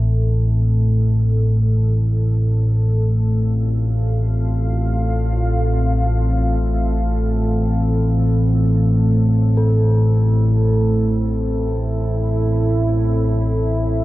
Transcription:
0, 0, Header, 1, 4, 480
1, 0, Start_track
1, 0, Tempo, 500000
1, 13483, End_track
2, 0, Start_track
2, 0, Title_t, "Singing bowl"
2, 0, Program_c, 0, 14
2, 9191, Note_on_c, 0, 69, 57
2, 13483, Note_off_c, 0, 69, 0
2, 13483, End_track
3, 0, Start_track
3, 0, Title_t, "Ambient pad"
3, 0, Program_c, 1, 92
3, 0, Note_on_c, 1, 60, 71
3, 0, Note_on_c, 1, 64, 74
3, 0, Note_on_c, 1, 69, 89
3, 0, Note_on_c, 1, 76, 63
3, 1783, Note_off_c, 1, 76, 0
3, 1786, Note_off_c, 1, 64, 0
3, 2536, Note_on_c, 1, 77, 75
3, 2547, Note_on_c, 1, 65, 69
3, 9205, Note_off_c, 1, 77, 0
3, 9213, Note_off_c, 1, 65, 0
3, 9998, Note_on_c, 1, 64, 79
3, 12269, Note_on_c, 1, 76, 67
3, 13483, Note_off_c, 1, 60, 0
3, 13483, Note_off_c, 1, 64, 0
3, 13483, Note_off_c, 1, 69, 0
3, 13483, Note_off_c, 1, 76, 0
3, 13483, End_track
4, 0, Start_track
4, 0, Title_t, "Synth drone"
4, 0, Program_c, 2, 95
4, 0, Note_on_c, 2, 33, 62
4, 0, Note_on_c, 2, 45, 65
4, 13483, Note_off_c, 2, 33, 0
4, 13483, Note_off_c, 2, 45, 0
4, 13483, End_track
0, 0, End_of_file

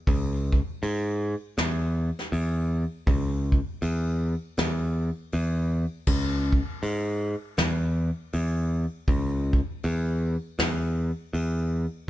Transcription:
0, 0, Header, 1, 3, 480
1, 0, Start_track
1, 0, Key_signature, 4, "minor"
1, 0, Tempo, 750939
1, 43, Time_signature, 4, 2, 24, 8
1, 7731, End_track
2, 0, Start_track
2, 0, Title_t, "Picked electric bass"
2, 0, Program_c, 0, 34
2, 48, Note_on_c, 0, 37, 95
2, 377, Note_off_c, 0, 37, 0
2, 528, Note_on_c, 0, 44, 96
2, 857, Note_off_c, 0, 44, 0
2, 1008, Note_on_c, 0, 40, 96
2, 1337, Note_off_c, 0, 40, 0
2, 1484, Note_on_c, 0, 40, 88
2, 1814, Note_off_c, 0, 40, 0
2, 1962, Note_on_c, 0, 37, 101
2, 2293, Note_off_c, 0, 37, 0
2, 2442, Note_on_c, 0, 40, 96
2, 2772, Note_off_c, 0, 40, 0
2, 2927, Note_on_c, 0, 40, 101
2, 3255, Note_off_c, 0, 40, 0
2, 3409, Note_on_c, 0, 40, 89
2, 3736, Note_off_c, 0, 40, 0
2, 3883, Note_on_c, 0, 37, 96
2, 4213, Note_off_c, 0, 37, 0
2, 4364, Note_on_c, 0, 44, 96
2, 4693, Note_off_c, 0, 44, 0
2, 4844, Note_on_c, 0, 40, 98
2, 5173, Note_off_c, 0, 40, 0
2, 5328, Note_on_c, 0, 40, 79
2, 5656, Note_off_c, 0, 40, 0
2, 5805, Note_on_c, 0, 37, 94
2, 6134, Note_off_c, 0, 37, 0
2, 6290, Note_on_c, 0, 40, 102
2, 6617, Note_off_c, 0, 40, 0
2, 6767, Note_on_c, 0, 40, 99
2, 7096, Note_off_c, 0, 40, 0
2, 7245, Note_on_c, 0, 40, 79
2, 7574, Note_off_c, 0, 40, 0
2, 7731, End_track
3, 0, Start_track
3, 0, Title_t, "Drums"
3, 47, Note_on_c, 9, 36, 109
3, 47, Note_on_c, 9, 46, 59
3, 110, Note_off_c, 9, 36, 0
3, 111, Note_off_c, 9, 46, 0
3, 335, Note_on_c, 9, 36, 86
3, 399, Note_off_c, 9, 36, 0
3, 528, Note_on_c, 9, 46, 61
3, 592, Note_off_c, 9, 46, 0
3, 1004, Note_on_c, 9, 46, 59
3, 1013, Note_on_c, 9, 38, 118
3, 1068, Note_off_c, 9, 46, 0
3, 1077, Note_off_c, 9, 38, 0
3, 1399, Note_on_c, 9, 38, 37
3, 1463, Note_off_c, 9, 38, 0
3, 1487, Note_on_c, 9, 46, 61
3, 1551, Note_off_c, 9, 46, 0
3, 1963, Note_on_c, 9, 36, 111
3, 1964, Note_on_c, 9, 46, 64
3, 2027, Note_off_c, 9, 36, 0
3, 2027, Note_off_c, 9, 46, 0
3, 2251, Note_on_c, 9, 36, 85
3, 2315, Note_off_c, 9, 36, 0
3, 2439, Note_on_c, 9, 46, 66
3, 2503, Note_off_c, 9, 46, 0
3, 2922, Note_on_c, 9, 46, 58
3, 2931, Note_on_c, 9, 38, 120
3, 2986, Note_off_c, 9, 46, 0
3, 2995, Note_off_c, 9, 38, 0
3, 3401, Note_on_c, 9, 46, 59
3, 3465, Note_off_c, 9, 46, 0
3, 3879, Note_on_c, 9, 49, 101
3, 3882, Note_on_c, 9, 36, 107
3, 3943, Note_off_c, 9, 49, 0
3, 3946, Note_off_c, 9, 36, 0
3, 4171, Note_on_c, 9, 36, 93
3, 4235, Note_off_c, 9, 36, 0
3, 4361, Note_on_c, 9, 46, 63
3, 4425, Note_off_c, 9, 46, 0
3, 4838, Note_on_c, 9, 46, 62
3, 4847, Note_on_c, 9, 38, 111
3, 4902, Note_off_c, 9, 46, 0
3, 4911, Note_off_c, 9, 38, 0
3, 5323, Note_on_c, 9, 46, 58
3, 5387, Note_off_c, 9, 46, 0
3, 5800, Note_on_c, 9, 46, 60
3, 5803, Note_on_c, 9, 36, 105
3, 5864, Note_off_c, 9, 46, 0
3, 5867, Note_off_c, 9, 36, 0
3, 6093, Note_on_c, 9, 36, 89
3, 6157, Note_off_c, 9, 36, 0
3, 6285, Note_on_c, 9, 46, 68
3, 6349, Note_off_c, 9, 46, 0
3, 6764, Note_on_c, 9, 46, 60
3, 6773, Note_on_c, 9, 38, 108
3, 6828, Note_off_c, 9, 46, 0
3, 6837, Note_off_c, 9, 38, 0
3, 7248, Note_on_c, 9, 46, 62
3, 7312, Note_off_c, 9, 46, 0
3, 7731, End_track
0, 0, End_of_file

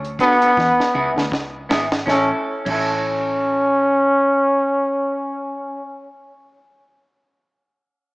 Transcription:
0, 0, Header, 1, 7, 480
1, 0, Start_track
1, 0, Key_signature, 3, "major"
1, 0, Tempo, 750000
1, 1327, Time_signature, 4, 2, 24, 8
1, 5212, End_track
2, 0, Start_track
2, 0, Title_t, "Clean electric guitar"
2, 0, Program_c, 0, 27
2, 123, Note_on_c, 0, 62, 88
2, 130, Note_on_c, 0, 66, 96
2, 132, Note_on_c, 0, 69, 94
2, 223, Note_off_c, 0, 62, 0
2, 226, Note_off_c, 0, 66, 0
2, 227, Note_off_c, 0, 69, 0
2, 268, Note_on_c, 0, 69, 57
2, 274, Note_on_c, 0, 66, 55
2, 277, Note_on_c, 0, 62, 49
2, 323, Note_off_c, 0, 69, 0
2, 325, Note_off_c, 0, 66, 0
2, 327, Note_off_c, 0, 62, 0
2, 602, Note_on_c, 0, 59, 85
2, 608, Note_on_c, 0, 64, 90
2, 612, Note_on_c, 0, 68, 85
2, 703, Note_off_c, 0, 59, 0
2, 705, Note_off_c, 0, 64, 0
2, 707, Note_off_c, 0, 68, 0
2, 1084, Note_on_c, 0, 59, 93
2, 1088, Note_on_c, 0, 64, 91
2, 1091, Note_on_c, 0, 68, 97
2, 1183, Note_off_c, 0, 59, 0
2, 1185, Note_off_c, 0, 64, 0
2, 1187, Note_off_c, 0, 68, 0
2, 1317, Note_on_c, 0, 61, 73
2, 1333, Note_on_c, 0, 64, 74
2, 1347, Note_on_c, 0, 69, 99
2, 1695, Note_off_c, 0, 61, 0
2, 1697, Note_on_c, 0, 61, 75
2, 1712, Note_off_c, 0, 64, 0
2, 1715, Note_on_c, 0, 64, 77
2, 1729, Note_off_c, 0, 69, 0
2, 1731, Note_on_c, 0, 69, 92
2, 4177, Note_off_c, 0, 61, 0
2, 4195, Note_off_c, 0, 64, 0
2, 4211, Note_off_c, 0, 69, 0
2, 5212, End_track
3, 0, Start_track
3, 0, Title_t, "Trombone"
3, 0, Program_c, 1, 57
3, 131, Note_on_c, 1, 59, 113
3, 824, Note_off_c, 1, 59, 0
3, 1331, Note_on_c, 1, 61, 89
3, 1477, Note_off_c, 1, 61, 0
3, 1709, Note_on_c, 1, 61, 90
3, 3735, Note_off_c, 1, 61, 0
3, 5212, End_track
4, 0, Start_track
4, 0, Title_t, "Clean electric guitar"
4, 0, Program_c, 2, 27
4, 368, Note_on_c, 2, 52, 89
4, 451, Note_off_c, 2, 52, 0
4, 607, Note_on_c, 2, 49, 75
4, 690, Note_off_c, 2, 49, 0
4, 744, Note_on_c, 2, 50, 68
4, 805, Note_off_c, 2, 50, 0
4, 846, Note_on_c, 2, 49, 74
4, 991, Note_off_c, 2, 49, 0
4, 1083, Note_on_c, 2, 44, 71
4, 1228, Note_off_c, 2, 44, 0
4, 5212, End_track
5, 0, Start_track
5, 0, Title_t, "Fingered electric bass"
5, 0, Program_c, 3, 33
5, 0, Note_on_c, 3, 38, 88
5, 114, Note_off_c, 3, 38, 0
5, 369, Note_on_c, 3, 40, 88
5, 499, Note_off_c, 3, 40, 0
5, 609, Note_on_c, 3, 37, 87
5, 739, Note_off_c, 3, 37, 0
5, 750, Note_on_c, 3, 38, 77
5, 841, Note_off_c, 3, 38, 0
5, 845, Note_on_c, 3, 37, 77
5, 1073, Note_off_c, 3, 37, 0
5, 1089, Note_on_c, 3, 32, 82
5, 1315, Note_off_c, 3, 32, 0
5, 1327, Note_on_c, 3, 33, 97
5, 1475, Note_off_c, 3, 33, 0
5, 1707, Note_on_c, 3, 33, 93
5, 4162, Note_off_c, 3, 33, 0
5, 5212, End_track
6, 0, Start_track
6, 0, Title_t, "Muted clean electric guitar strokes"
6, 745, Note_on_c, 9, 29, 59
6, 809, Note_off_c, 9, 29, 0
6, 5212, End_track
7, 0, Start_track
7, 0, Title_t, "Drums"
7, 29, Note_on_c, 9, 42, 46
7, 93, Note_off_c, 9, 42, 0
7, 122, Note_on_c, 9, 36, 91
7, 126, Note_on_c, 9, 42, 67
7, 186, Note_off_c, 9, 36, 0
7, 190, Note_off_c, 9, 42, 0
7, 268, Note_on_c, 9, 42, 48
7, 332, Note_off_c, 9, 42, 0
7, 367, Note_on_c, 9, 36, 97
7, 375, Note_on_c, 9, 38, 52
7, 431, Note_off_c, 9, 36, 0
7, 439, Note_off_c, 9, 38, 0
7, 513, Note_on_c, 9, 38, 54
7, 577, Note_off_c, 9, 38, 0
7, 754, Note_on_c, 9, 38, 70
7, 818, Note_off_c, 9, 38, 0
7, 844, Note_on_c, 9, 36, 118
7, 854, Note_on_c, 9, 38, 80
7, 908, Note_off_c, 9, 36, 0
7, 918, Note_off_c, 9, 38, 0
7, 1094, Note_on_c, 9, 38, 99
7, 1158, Note_off_c, 9, 38, 0
7, 1229, Note_on_c, 9, 38, 87
7, 1293, Note_off_c, 9, 38, 0
7, 1325, Note_on_c, 9, 36, 107
7, 1332, Note_on_c, 9, 38, 87
7, 1389, Note_off_c, 9, 36, 0
7, 1396, Note_off_c, 9, 38, 0
7, 1704, Note_on_c, 9, 36, 106
7, 1704, Note_on_c, 9, 49, 90
7, 1768, Note_off_c, 9, 36, 0
7, 1768, Note_off_c, 9, 49, 0
7, 5212, End_track
0, 0, End_of_file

